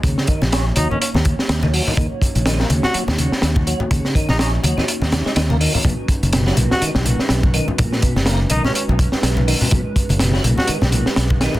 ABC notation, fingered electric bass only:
X:1
M:4/4
L:1/16
Q:"Swing 16ths" 1/4=124
K:Ebm
V:1 name="Fingered electric bass" clef=bass
E,, z2 B,,,2 z E,, z2 E,,2 z E,,2 z2 | E,, z2 B,,,2 z E,, z2 E,,2 z E,,2 z2 | E,, z2 B,,,2 z E,, z2 E,,2 z E,,2 z2 | =B,,, z2 ^F,,,2 z B,,, z2 B,,,2 z B,,,2 z2 |
=B,,, z2 ^F,,,2 z B,,, z2 B,,,2 z B,,,2 z2 | =B,,, z2 ^F,,,2 z B,,, z2 B,,,2 z B,,,2 z2 |]